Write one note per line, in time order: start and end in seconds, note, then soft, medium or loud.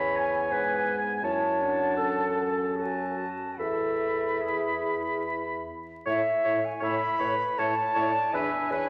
0.00 0.48 E2 medium
0.00 1.24 B3 medium
0.00 0.53 C#5 medium
0.00 1.24 G#5 medium
0.00 0.18 B5 medium
0.16 1.23 G#5 medium
0.51 1.22 G#2 soft
0.51 0.98 B4 medium
1.23 3.24 F#2 medium
1.23 1.62 E4 medium
1.23 1.95 C#5 medium
1.23 1.62 A5 medium
1.23 2.62 A5 medium
1.61 2.00 D4 medium
1.61 2.48 F#5 medium
1.97 3.28 C#4 medium
1.97 2.77 A4 medium
2.76 3.58 F#4 medium
2.76 3.20 G#5 medium
2.76 3.30 A5 soft
3.18 3.61 A5 medium
3.58 5.69 E2 soft
3.58 5.70 E4 medium
3.58 4.43 A4 medium
3.58 5.67 E5 soft
3.58 5.69 B5 soft
4.41 5.25 G#4 medium
6.06 6.22 A2 medium
6.06 6.22 E4 medium
6.06 6.22 C#5 medium
6.06 6.67 E5 medium
6.44 6.61 A2 medium
6.44 6.60 E4 medium
6.44 6.60 C#5 medium
6.65 6.85 G#5 medium
6.80 6.98 A2 medium
6.80 6.98 E4 medium
6.80 6.96 C#5 medium
6.80 7.21 E5 medium
6.80 7.60 B5 medium
7.19 7.36 A2 medium
7.19 7.36 E4 medium
7.19 7.59 B4 medium
7.19 7.35 C#5 medium
7.58 7.74 A2 medium
7.58 7.75 E4 medium
7.58 7.96 C#5 medium
7.58 7.75 C#5 medium
7.58 8.34 A5 medium
7.95 8.11 A2 medium
7.95 8.12 E4 medium
7.95 8.11 C#5 medium
7.95 8.35 D5 medium
8.32 8.49 E2 medium
8.32 8.50 D4 medium
8.32 8.51 B4 medium
8.32 8.72 E5 medium
8.32 8.89 G#5 loud
8.70 8.86 E2 medium
8.70 8.87 D4 medium
8.70 8.88 B4 medium
8.70 8.89 C#5 medium